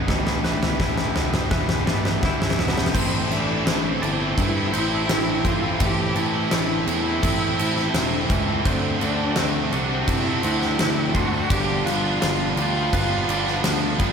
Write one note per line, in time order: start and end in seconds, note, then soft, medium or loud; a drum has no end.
0.00 0.44 C#5 medium
0.07 0.72 A1 medium
0.07 0.42 E2 medium
0.07 1.88 A2 medium
0.07 0.43 B2 loud
0.07 0.43 E3 loud
0.07 0.44 A3 medium
0.07 0.44 G4 loud
0.07 0.45 B4 loud
0.07 0.45 E5 loud
0.07 kick loud
0.07 snare medium
0.07 floor tom medium
0.27 snare loud
0.44 0.77 E2 medium
0.44 0.78 B2 medium
0.44 0.79 E3 medium
0.44 2.23 G3 medium
0.44 0.79 A3 medium
0.44 0.80 G4 medium
0.44 1.16 B4 medium
0.44 0.80 B4 medium
0.44 0.81 E5 loud
0.44 snare loud
0.63 snare medium
0.63 floor tom medium
0.78 1.12 A1 medium
0.78 1.14 E2 medium
0.78 1.14 B2 medium
0.78 1.15 E3 loud
0.78 1.15 A3 medium
0.78 2.22 E4 medium
0.78 1.16 G4 loud
0.78 1.16 B4 loud
0.78 1.16 E5 loud
0.78 kick loud
0.78 snare loud
0.98 snare medium
1.15 1.48 E1 medium
1.15 1.49 E2 medium
1.15 1.50 B2 medium
1.15 1.50 E3 loud
1.15 1.51 A3 medium
1.15 1.86 B3 medium
1.15 1.52 G4 medium
1.15 1.52 B4 medium
1.15 1.52 E5 loud
1.15 snare loud
1.15 floor tom medium
1.34 snare loud
1.34 mid tom medium
1.50 1.83 E1 medium
1.50 1.86 E2 medium
1.50 1.86 B2 loud
1.50 1.87 E3 loud
1.50 2.95 E3 medium
1.50 1.87 A3 medium
1.50 1.87 G4 medium
1.50 1.86 B4 loud
1.50 1.88 B4 medium
1.50 1.88 E5 medium
1.50 kick loud
1.50 snare loud
1.50 floor tom medium
1.69 snare loud
1.69 mid tom medium
1.86 2.19 A1 medium
1.86 2.21 E2 medium
1.86 2.21 B2 loud
1.86 2.22 E3 loud
1.86 2.22 A3 loud
1.86 2.58 B3 medium
1.86 2.23 G4 loud
1.86 2.23 B4 loud
1.86 2.59 D5 medium
1.86 2.24 E5 medium
1.86 snare loud
1.86 mid tom medium
2.05 snare loud
2.22 2.55 G1 medium
2.22 2.57 E2 medium
2.22 2.58 B2 medium
2.22 2.58 E3 medium
2.22 2.58 A3 medium
2.22 2.95 E4 medium
2.22 2.59 G4 loud
2.22 2.59 B4 loud
2.22 2.59 E5 loud
2.22 kick loud
2.22 snare loud
2.22 floor tom medium
2.42 snare loud
2.42 mid tom medium
2.50 snare loud
2.58 2.90 E1 loud
2.58 2.92 E2 medium
2.58 2.93 B2 medium
2.58 2.93 E3 medium
2.58 2.93 A3 medium
2.58 2.95 B3 medium
2.58 2.93 G4 loud
2.58 2.93 B4 medium
2.58 2.93 E5 loud
2.58 snare loud
2.58 floor tom medium
2.68 snare loud
2.78 snare loud
2.86 snare loud
2.93 3.26 A1 loud
2.93 3.64 A2 medium
2.93 3.66 A2 loud
2.93 4.73 A2 medium
2.93 3.30 E3 loud
2.93 3.66 E3 loud
2.93 3.31 A3 medium
2.93 3.31 A3 loud
2.93 3.28 C4 medium
2.93 3.32 C4 loud
2.93 3.33 E4 loud
2.93 3.32 E4 loud
2.93 3.33 A4 loud
2.93 4.02 C5 loud
2.93 kick loud
2.93 crash loud
2.93 crash medium
3.30 3.61 A1 loud
3.30 5.09 E3 medium
3.30 3.66 E3 medium
3.30 3.67 A3 medium
3.30 3.50 A3 medium
3.30 3.67 C4 medium
3.30 3.49 C4 medium
3.30 3.66 D4 medium
3.30 3.67 E4 medium
3.30 3.48 E4 medium
3.30 3.68 A4 medium
3.30 snare soft
3.30 crash medium
3.48 3.66 A3 medium
3.48 3.67 C4 medium
3.48 3.66 E4 medium
3.65 3.97 A1 medium
3.65 5.08 A2 loud
3.65 4.01 E3 loud
3.65 5.09 E3 loud
3.65 5.44 G3 medium
3.65 4.02 A3 loud
3.65 3.85 A3 loud
3.65 4.41 C4 medium
3.65 4.02 C4 medium
3.65 3.84 C4 loud
3.65 4.03 E4 loud
3.65 3.84 E4 loud
3.65 3.83 A4 loud
3.65 snare loud
3.65 crash medium
3.83 4.02 A3 medium
3.83 4.02 C4 medium
3.83 4.02 E4 medium
3.83 4.03 A4 medium
4.01 4.33 G1 medium
4.01 4.55 E3 medium
4.01 4.21 A3 medium
4.01 4.20 C4 medium
4.01 4.17 E4 medium
4.01 4.73 D5 medium
4.01 muted overdriven electric guitar stroke medium
4.01 crash medium
4.18 4.56 A3 medium
4.18 4.57 A3 medium
4.18 4.55 C4 medium
4.18 4.56 C4 medium
4.18 4.53 E4 medium
4.18 4.55 E4 medium
4.18 4.55 A4 medium
4.37 4.69 G2 medium
4.37 5.09 C4 medium
4.37 4.74 E4 loud
4.37 kick loud
4.37 crash medium
4.54 4.93 A3 medium
4.54 4.72 A3 medium
4.54 4.92 C4 medium
4.54 4.73 C4 medium
4.54 4.90 E4 medium
4.54 4.73 E4 medium
4.54 4.75 A4 medium
4.72 5.04 A1 medium
4.72 5.09 A3 medium
4.72 5.10 C4 medium
4.72 5.49 E4 loud
4.72 5.10 E4 medium
4.72 5.10 A4 medium
4.72 5.45 C5 medium
4.72 crash medium
4.91 5.09 A3 medium
4.91 5.10 C4 medium
4.91 5.09 E4 medium
5.08 5.40 A1 medium
5.08 5.79 A2 loud
5.08 5.62 A2 medium
5.08 5.63 E3 loud
5.08 5.43 E3 medium
5.08 5.45 A3 loud
5.08 5.29 A3 loud
5.08 7.24 C4 medium
5.08 5.28 C4 loud
5.08 5.46 C4 medium
5.08 5.45 E4 loud
5.08 5.27 E4 loud
5.08 5.27 A4 loud
5.08 snare loud
5.08 crash loud
5.27 5.64 A3 medium
5.27 5.63 C4 medium
5.27 5.62 E4 medium
5.27 5.62 A4 medium
5.44 5.76 A1 medium
5.44 5.80 E3 medium
5.44 5.64 A3 medium
5.44 5.63 C4 medium
5.44 5.61 E4 loud
5.44 5.83 F4 loud
5.44 7.58 C5 medium
5.44 kick medium
5.44 crash medium
5.63 5.81 A3 medium
5.63 5.82 C4 medium
5.63 5.81 E4 medium
5.63 5.82 E4 medium
5.63 5.83 A4 medium
5.80 6.12 A1 loud
5.80 6.50 A2 medium
5.80 6.51 A2 loud
5.80 7.59 A2 medium
5.80 6.52 E3 loud
5.80 6.15 E3 loud
5.80 6.16 A3 loud
5.80 6.17 A3 loud
5.80 6.17 C4 loud
5.80 6.18 C4 loud
5.80 6.17 E4 loud
5.80 6.19 G4 loud
5.80 6.19 A4 loud
5.80 kick loud
5.80 crash medium
6.16 6.47 A1 loud
6.16 7.94 E3 medium
6.16 6.51 E3 medium
6.16 6.53 A3 medium
6.16 6.35 A3 medium
6.16 6.53 C4 medium
6.16 6.34 C4 medium
6.16 6.87 E4 loud
6.16 6.53 E4 medium
6.16 6.31 E4 medium
6.16 7.23 A4 medium
6.16 6.54 A4 loud
6.16 crash medium
6.33 6.52 A3 medium
6.33 6.53 C4 medium
6.33 6.53 E4 medium
6.51 6.83 A1 loud
6.51 7.23 A2 loud
6.51 7.05 A2 loud
6.51 6.86 E3 loud
6.51 7.06 E3 loud
6.51 8.31 G3 medium
6.51 6.87 A3 loud
6.51 6.72 A3 loud
6.51 6.88 C4 loud
6.51 6.71 C4 loud
6.51 6.88 E4 loud
6.51 6.69 E4 loud
6.51 6.69 A4 loud
6.51 snare loud
6.51 crash medium
6.70 6.87 A3 medium
6.70 6.88 C4 medium
6.70 6.87 E4 medium
6.70 6.88 A4 medium
6.87 7.18 E2 loud
6.87 7.41 E3 medium
6.87 7.07 A3 medium
6.87 7.05 C4 medium
6.87 8.26 E4 loud
6.87 7.58 E4 medium
6.87 7.04 E4 medium
6.87 muted overdriven electric guitar stroke soft
6.87 crash medium
7.05 7.41 A3 medium
7.05 7.42 A3 medium
7.05 7.41 C4 medium
7.05 7.40 E4 medium
7.05 7.39 A4 medium
7.23 7.55 A1 medium
7.23 7.93 C4 medium
7.23 7.58 A4 medium
7.23 kick loud
7.23 crash loud
7.41 7.57 A3 medium
7.41 7.78 A3 medium
7.41 7.77 C4 medium
7.41 7.58 C4 medium
7.41 7.76 E4 medium
7.41 7.58 E4 medium
7.41 7.59 A4 medium
7.58 7.90 A1 medium
7.58 7.94 A3 medium
7.58 7.94 C4 medium
7.58 8.66 E4 medium
7.58 7.95 E4 medium
7.58 7.95 A4 medium
7.58 8.30 C5 medium
7.58 crash medium
7.76 7.94 A3 medium
7.76 7.95 C4 medium
7.76 7.95 E4 medium
7.76 snare soft
7.94 8.25 E1 loud
7.94 8.48 A2 loud
7.94 8.64 A2 medium
7.94 8.48 E3 loud
7.94 8.29 E3 medium
7.94 8.13 A3 loud
7.94 8.30 A3 medium
7.94 8.66 C4 medium
7.94 8.12 C4 loud
7.94 8.31 C4 loud
7.94 8.12 E4 loud
7.94 8.31 E4 loud
7.94 8.11 A4 loud
7.94 snare loud
7.94 crash loud
8.12 8.48 A3 medium
8.12 8.47 C4 medium
8.12 8.47 E4 medium
8.12 8.46 A4 medium
8.30 8.61 C#2 medium
8.30 8.65 E3 medium
8.30 8.64 E3 medium
8.30 8.49 A3 medium
8.30 8.48 C4 medium
8.30 8.47 E4 medium
8.30 kick loud
8.30 crash medium
8.47 8.64 A3 medium
8.47 8.65 A3 medium
8.47 8.64 C4 medium
8.47 8.63 E4 medium
8.47 8.64 E4 medium
8.47 8.63 A4 medium
8.65 8.97 D2 medium
8.65 8.99 D3 loud
8.65 9.00 D3 medium
8.65 9.00 F#3 loud
8.65 9.00 A3 loud
8.65 9.05 C4 medium
8.65 9.01 C4 loud
8.65 9.02 D4 loud
8.65 9.01 F#4 loud
8.65 9.37 C5 loud
8.65 kick loud
8.65 crash loud
9.00 9.33 D2 loud
9.00 9.35 D3 medium
9.00 10.80 D3 medium
9.00 9.19 F#3 medium
9.00 9.36 A3 medium
9.00 9.18 A3 loud
9.00 9.36 C4 loud
9.00 9.18 D4 medium
9.00 9.38 D4 loud
9.00 9.37 F#4 loud
9.00 crash medium
9.18 9.35 F#3 medium
9.18 9.36 A3 medium
9.18 9.37 D4 medium
9.36 9.68 D2 medium
9.36 9.70 D3 loud
9.36 9.71 D3 medium
9.36 9.71 F#3 loud
9.36 9.55 A3 loud
9.36 9.71 A3 loud
9.36 11.15 A3 medium
9.36 10.09 C4 medium
9.36 9.54 C4 loud
9.36 9.72 D4 loud
9.36 9.52 F#4 loud
9.36 snare loud
9.36 crash medium
9.54 9.71 A3 medium
9.54 9.72 C4 medium
9.54 9.72 F#4 medium
9.71 10.04 C2 medium
9.71 10.25 D3 medium
9.71 9.90 F#3 medium
9.71 9.89 A3 medium
9.71 9.88 D4 medium
9.71 10.43 F#4 medium
9.71 10.44 D5 medium
9.71 muted overdriven electric guitar stroke medium
9.71 crash medium
9.89 10.26 F#3 medium
9.89 10.25 A3 medium
9.89 10.27 A3 medium
9.89 10.26 C4 medium
9.89 10.24 D4 medium
9.89 10.25 F#4 medium
10.08 10.39 C3 medium
10.08 10.79 C4 medium
10.08 10.43 E4 loud
10.08 kick medium
10.08 crash loud
10.25 10.62 F#3 medium
10.25 10.60 A3 medium
10.25 10.43 A3 medium
10.25 10.44 C4 medium
10.25 10.59 D4 medium
10.25 10.45 F#4 medium
10.43 10.75 D2 medium
10.43 10.77 D3 medium
10.43 10.78 A3 medium
10.43 10.79 C4 medium
10.43 11.16 E4 loud
10.43 11.51 F#4 medium
10.43 10.80 F#4 medium
10.43 11.15 C5 medium
10.43 crash medium
10.60 10.77 F#3 medium
10.60 10.78 A3 medium
10.60 10.78 D4 medium
10.60 snare soft
10.77 11.11 D2 loud
10.77 11.14 D3 loud
10.77 11.32 D3 loud
10.77 11.14 F#3 medium
10.77 11.15 A3 loud
10.77 10.98 A3 loud
10.77 11.51 C4 medium
10.77 10.96 C4 loud
10.77 11.15 D4 loud
10.77 10.95 F#4 loud
10.77 snare loud
10.77 crash medium
10.97 11.34 A3 medium
10.97 11.33 C4 medium
10.97 11.32 F#4 medium
11.14 11.46 D2 medium
11.14 11.48 D3 medium
11.14 11.51 D3 medium
11.14 11.33 F#3 medium
11.14 11.33 A3 medium
11.14 11.32 D4 medium
11.14 11.50 F#4 loud
11.14 11.86 C6 medium
11.14 kick medium
11.14 crash medium
11.33 11.49 F#3 medium
11.33 11.49 A3 medium
11.33 11.50 A3 medium
11.33 11.49 C4 medium
11.33 11.48 D4 medium
11.33 11.49 F#4 medium
11.49 11.82 G1 medium
11.49 12.20 G2 medium
11.49 13.29 G2 medium
11.49 11.85 D3 medium
11.49 11.84 D3 loud
11.49 11.86 F3 medium
11.49 11.86 G3 medium
11.49 11.86 B3 loud
11.49 11.86 D4 loud
11.49 11.87 F4 loud
11.49 11.86 G4 loud
11.49 kick loud
11.49 crash loud
11.85 12.17 G1 loud
11.85 12.21 D3 medium
11.85 12.20 D3 medium
11.85 13.64 F3 medium
11.85 12.22 F3 medium
11.85 12.05 G3 medium
11.85 12.03 B3 medium
11.85 12.22 B3 medium
11.85 12.02 D4 medium
11.85 12.55 F4 loud
11.85 12.22 F4 medium
11.85 12.57 B4 medium
11.85 snare soft
11.85 crash medium
12.03 12.22 G3 medium
12.03 12.21 B3 medium
12.03 12.21 D4 medium
12.21 12.53 G1 medium
12.21 12.93 G2 loud
12.21 12.75 G2 medium
12.21 12.55 D3 loud
12.21 12.57 D3 loud
12.21 12.40 F3 loud
12.21 12.57 G3 loud
12.21 14.04 G3 medium
12.21 12.57 B3 loud
12.21 12.39 B3 loud
12.21 12.57 D4 loud
12.21 12.38 F4 loud
12.21 snare loud
12.21 crash medium
12.39 12.57 F3 medium
12.39 12.58 B3 medium
12.39 12.57 F4 medium
12.56 12.88 D2 medium
12.56 13.10 D3 medium
12.56 12.76 G3 medium
12.56 12.74 B3 medium
12.56 12.73 D4 medium
12.56 13.95 F4 loud
12.56 13.29 G4 medium
12.56 muted overdriven electric guitar stroke soft
12.56 crash medium
12.74 13.12 F3 medium
12.74 13.11 G3 medium
12.74 13.10 B3 medium
12.74 13.11 B3 medium
12.74 13.08 D4 medium
12.74 13.10 F4 medium
12.93 13.24 G1 medium
12.93 13.64 B3 medium
12.93 13.29 B4 medium
12.93 kick medium
12.93 crash loud
13.10 13.29 F3 medium
13.10 13.49 G3 medium
13.10 13.47 B3 medium
13.10 13.30 B3 medium
13.10 13.46 D4 medium
13.10 13.30 F4 medium
13.28 13.60 G1 medium
13.28 13.64 D3 medium
13.28 13.64 F3 medium
13.28 13.65 B3 medium
13.28 13.65 F4 medium
13.28 14.13 G4 medium
13.28 14.00 D5 medium
13.28 crash medium
13.47 13.65 G3 medium
13.47 13.64 B3 medium
13.47 13.65 D4 medium
13.47 snare soft
13.64 13.96 D2 medium
13.64 14.13 G2 medium
13.64 13.98 D3 loud
13.64 14.13 D3 loud
13.64 13.84 F3 loud
13.64 14.00 G3 medium
13.64 14.00 B3 loud
13.64 14.13 B3 medium
13.64 13.83 B3 medium
13.64 14.00 D4 loud
13.64 13.81 F4 loud
13.64 snare loud
13.64 crash loud
13.83 14.13 F3 medium
13.83 14.13 B3 medium
13.83 14.13 F4 medium
13.99 14.13 G1 medium
13.99 14.13 D3 medium
13.99 14.13 F3 medium
13.99 14.13 G3 medium
13.99 14.13 B3 medium
13.99 14.13 D4 medium
13.99 kick medium
13.99 crash medium